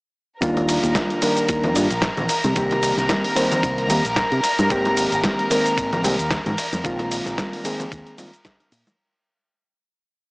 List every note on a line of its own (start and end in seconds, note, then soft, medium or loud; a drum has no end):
0.41 0.77 D#2 medium
0.41 1.19 D#3 medium
0.41 1.19 G3 medium
0.41 1.19 A#3 medium
0.41 1.19 D4 medium
0.41 1.20 F4 medium
0.41 9.00 A#4 medium
0.41 9.00 A#5 medium
0.41 kick loud
0.41 closed hi-hat medium
0.41 shaker soft
0.57 closed hi-hat soft
0.57 muted conga medium
0.69 open hi-hat loud
0.69 ride medium
0.69 shaker medium
0.84 0.92 D#2 loud
0.84 closed hi-hat medium
0.84 shaker soft
0.95 kick loud
0.95 snare loud
0.95 closed hi-hat medium
0.95 high conga medium
0.95 shaker soft
1.10 closed hi-hat soft
1.22 1.73 D#3 medium
1.22 1.73 G3 medium
1.22 1.73 A#3 medium
1.22 1.73 D4 medium
1.22 1.73 A#4 medium
1.22 open hi-hat loud
1.22 ride medium
1.22 muted conga soft
1.22 shaker medium
1.37 closed hi-hat medium
1.37 shaker soft
1.48 1.76 D#2 medium
1.48 kick loud
1.48 closed hi-hat medium
1.48 shaker soft
1.64 closed hi-hat soft
1.64 low conga medium
1.75 1.86 G2 medium
1.75 1.87 D#3 medium
1.75 1.87 G3 medium
1.75 1.87 A#3 medium
1.75 1.87 D4 medium
1.75 1.87 F4 medium
1.75 open hi-hat loud
1.75 ride medium
1.75 high conga medium
1.75 shaker medium
1.91 2.09 A#1 medium
1.91 closed hi-hat medium
1.91 shaker soft
2.02 kick loud
2.02 snare loud
2.02 closed hi-hat medium
2.02 shaker soft
2.17 2.26 A#1 medium
2.17 closed hi-hat soft
2.17 muted conga soft
2.17 low conga loud
2.29 open hi-hat loud
2.29 ride medium
2.29 shaker medium
2.44 2.53 C3 medium
2.44 closed hi-hat medium
2.44 muted conga medium
2.44 high conga medium
2.44 shaker soft
2.55 2.91 C2 medium
2.55 3.33 D#3 medium
2.55 3.33 G3 medium
2.55 3.34 A#3 medium
2.55 3.34 C4 medium
2.55 3.34 G4 medium
2.55 kick loud
2.55 closed hi-hat medium
2.55 shaker soft
2.71 closed hi-hat soft
2.71 muted conga medium
2.83 open hi-hat loud
2.83 ride medium
2.83 shaker medium
2.98 3.06 C2 loud
2.98 snare soft
2.98 closed hi-hat medium
2.98 shaker soft
3.09 kick loud
3.09 snare loud
3.09 closed hi-hat medium
3.09 high conga loud
3.09 shaker soft
3.24 open hi-hat medium
3.36 3.87 D#3 medium
3.36 3.87 G3 medium
3.36 3.87 A#3 medium
3.36 3.87 C4 medium
3.36 3.87 C5 medium
3.36 open hi-hat loud
3.36 ride medium
3.36 shaker medium
3.52 closed hi-hat medium
3.52 low conga medium
3.52 shaker soft
3.63 3.90 C2 medium
3.63 kick loud
3.63 closed hi-hat medium
3.63 shaker soft
3.78 closed hi-hat soft
3.89 4.01 D#2 loud
3.89 4.01 D#3 medium
3.89 4.01 G3 medium
3.89 4.01 A#3 medium
3.89 4.01 C4 medium
3.89 4.01 G4 medium
3.89 open hi-hat loud
3.89 ride medium
3.89 high conga medium
3.89 shaker medium
4.05 4.23 A#1 medium
4.05 closed hi-hat medium
4.05 shaker soft
4.16 kick loud
4.16 snare loud
4.16 closed hi-hat medium
4.16 shaker soft
4.32 4.40 C3 medium
4.32 closed hi-hat soft
4.44 muted fingered electric bass stroke soft
4.44 open hi-hat loud
4.44 ride medium
4.44 shaker medium
4.59 4.67 G2 medium
4.59 closed hi-hat medium
4.59 muted conga medium
4.59 high conga medium
4.59 shaker soft
4.69 5.05 G#1 loud
4.69 5.47 D#3 medium
4.69 5.48 G#3 medium
4.69 5.48 A#3 medium
4.69 5.48 C4 medium
4.69 5.48 G4 medium
4.69 kick loud
4.69 closed hi-hat medium
4.69 shaker soft
4.85 closed hi-hat soft
4.85 muted conga medium
4.97 open hi-hat loud
4.97 ride medium
4.97 shaker medium
5.12 5.21 G#1 loud
5.12 closed hi-hat medium
5.12 shaker soft
5.24 kick loud
5.24 snare loud
5.24 closed hi-hat medium
5.24 high conga loud
5.24 shaker soft
5.39 closed hi-hat soft
5.50 6.01 D#3 medium
5.50 6.01 G#3 medium
5.50 6.01 A#3 medium
5.50 6.02 C4 medium
5.50 6.02 A#4 medium
5.50 open hi-hat loud
5.50 ride medium
5.50 muted conga soft
5.50 shaker medium
5.66 closed hi-hat medium
5.66 shaker soft
5.78 6.04 G#1 medium
5.78 kick loud
5.78 closed hi-hat medium
5.78 shaker soft
5.93 closed hi-hat soft
5.93 low conga medium
6.04 6.15 C2 loud
6.04 6.15 D#3 medium
6.04 6.15 G#3 medium
6.04 6.15 A#3 medium
6.04 6.15 C4 medium
6.04 6.16 G4 medium
6.04 open hi-hat loud
6.04 ride medium
6.04 high conga medium
6.04 shaker medium
6.19 6.38 D#2 medium
6.19 closed hi-hat medium
6.19 shaker soft
6.31 kick loud
6.31 snare loud
6.31 closed hi-hat medium
6.31 shaker soft
6.46 6.54 G#2 loud
6.46 closed hi-hat soft
6.46 muted conga soft
6.46 low conga medium
6.58 open hi-hat loud
6.58 ride medium
6.58 shaker medium
6.73 6.81 F2 medium
6.73 closed hi-hat medium
6.73 muted conga medium
6.73 high conga loud
6.73 shaker soft
6.84 7.62 D#3 medium
6.84 7.62 G#3 medium
6.84 7.62 A#3 medium
6.84 7.62 C4 medium
6.84 7.63 F4 medium
6.84 kick loud
6.84 closed hi-hat medium
6.84 shaker soft
6.99 closed hi-hat soft
6.99 muted conga medium
7.11 open hi-hat loud
7.11 ride medium
7.11 shaker medium
7.26 7.35 A#1 loud
7.26 snare soft
7.26 closed hi-hat medium
7.26 shaker soft
7.38 kick loud
7.38 snare loud
7.38 closed hi-hat medium
7.38 high conga loud
7.38 shaker soft
7.53 open hi-hat medium
7.64 8.15 D#3 medium
7.64 8.16 G#3 medium
7.64 8.16 A#3 medium
7.64 8.16 C4 medium
7.64 8.16 G#4 medium
7.64 open hi-hat loud
7.64 ride medium
7.64 shaker medium
7.80 closed hi-hat medium
7.80 low conga medium
7.80 shaker soft
7.92 8.02 D#2 medium
7.92 kick loud
7.92 closed hi-hat medium
7.92 shaker soft
8.07 closed hi-hat soft
8.18 8.29 D#3 medium
8.18 8.30 G#3 medium
8.18 8.30 A#3 medium
8.18 8.30 C4 medium
8.18 8.30 F4 medium
8.18 open hi-hat loud
8.18 ride medium
8.18 high conga medium
8.18 shaker medium
8.33 closed hi-hat soft
8.33 shaker soft
8.45 kick loud
8.45 snare loud
8.45 closed hi-hat medium
8.45 shaker soft
8.60 closed hi-hat soft
8.72 8.83 A#2 loud
8.72 open hi-hat loud
8.72 ride medium
8.72 shaker medium
8.87 closed hi-hat medium
8.87 muted conga medium
8.87 high conga loud
8.87 shaker soft